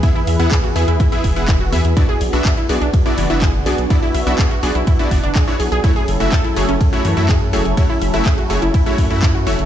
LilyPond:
<<
  \new Staff \with { instrumentName = "Supersaw synth" } { \time 4/4 \key b \dorian \tempo 4 = 124 <b e' gis' e''>16 r8 <b e' gis' fis''>16 r8 <b e' gis' e''>16 r8 <b e' gis' e''>8 <b e' gis' fis''>16 r8 <b e' gis' e''>16 r16 | <b d' fis' d''>16 r8 <b d' fis' e''>16 r8 <b d' fis' d''>16 r8 <b d' fis' d''>8 <b d' fis' e''>16 r8 <b d' fis' d''>16 r16 | <b d' fis' d''>16 r8 <b d' fis' e''>16 r8 <b d' fis' d''>16 r8 <b d' fis' d''>16 <b d' fis' d''>16 r8 <b d' fis' cis''>16 r8 | <a e' fis' cis''>16 r8 <a e' fis' e''>16 r8 <a e' fis' cis''>16 r8 <a e' fis' cis''>8 <a e' fis' e''>16 r8 <a e' fis' cis''>16 r16 |
<a e' fis' cis''>16 r8 <a e' fis' e''>16 r8 <a e' fis' cis''>16 r8 <a e' fis' cis''>8 <a e' fis' e''>16 r8 <a e' fis' cis''>16 r16 | }
  \new Staff \with { instrumentName = "Analog synth pad" } { \time 4/4 \key b \dorian <e e' gis' b'>1 | <b d' fis'>1~ | <b d' fis'>1 | <fis cis' e' a'>1~ |
<fis cis' e' a'>1 | }
  \new Staff \with { instrumentName = "Synth pluck" } { \time 4/4 \key b \dorian e'16 e'16 e''16 e'16 gis'16 fis'16 gis'16 e'16 e'16 e'16 r16 e'16 e'16 fis'16 e''16 r16 | e'16 gis'16 r8 e''16 e'16 gis'16 d'16 r16 e'16 e16 e'16 gis'16 r16 gis'16 r16 | e'16 e'16 e''16 e'16 gis'16 fis'16 gis'16 e'16 e'16 e'16 r16 d'16 gis'16 e'16 gis'16 gis'16 | e'16 gis'16 r8 a'16 e'16 gis'16 cis'16 r16 e'16 e16 e'16 gis'16 r16 gis'16 r16 |
e'16 e'16 e''16 e'16 gis'16 fis'16 gis'16 e'16 e'16 e'16 r16 e'16 e'16 fis'16 e''16 r16 | }
  \new Staff \with { instrumentName = "Analog synth bass" } { \clef bass \time 4/4 \key b \dorian r8 e,16 e,16 r8 e,16 e,16 r8 e,,16 e,,8. e,16 e,16 | r8 b,,16 b,,16 r8 b,,16 b,,16 r8 fis,,16 fis,,8. b,,16 b,,16 | r8 b,,16 b,,16 r8 b,,16 b,,16 r8 fis,,16 fis,,16 r8 b,,16 b,,16 | r8 fis,,16 fis,,16 r8 fis,,16 fis,,16 r8 fis,16 fis,8. fis,,16 fis,,16 |
r8 fis,,16 fis,,16 r8 fis,,16 fis,,16 r8 fis,16 fis,8. fis,,16 fis,,16 | }
  \new DrumStaff \with { instrumentName = "Drums" } \drummode { \time 4/4 <hh bd cymr>8 hho16 hh16 <hc hh bd cymr>16 hh16 hho16 hh16 <hh bd cymr>16 hh16 <hho bd>16 hh16 <hc hh bd cymr>8 hho16 hh16 | <hh bd cymr>8 hho16 hh16 <hc hh bd cymr>16 hh16 hho16 hh16 <hh bd cymr>16 hh16 hho16 hh16 <hc hh bd cymr>8 hho16 hh16 | <hh bd cymr>8 hho16 hh16 <hc hh bd cymr>16 hh16 hho16 hh16 <hh bd cymr>16 hh16 <hho bd>16 hh16 <hc hh bd cymr>8 hho16 hh16 | <hh bd cymr>8 hho16 hh16 <hc hh bd cymr>16 hh16 hho16 hh16 <hh bd cymr>16 hh16 hho16 hh16 <hc hh bd cymr>8 hho16 hh16 |
<hh bd cymr>8 hho16 hh16 <hc hh bd cymr>16 hh16 hho16 hh16 <hh bd cymr>16 hh16 <hho bd>16 hh16 <hc hh bd cymr>8 hho16 hh16 | }
>>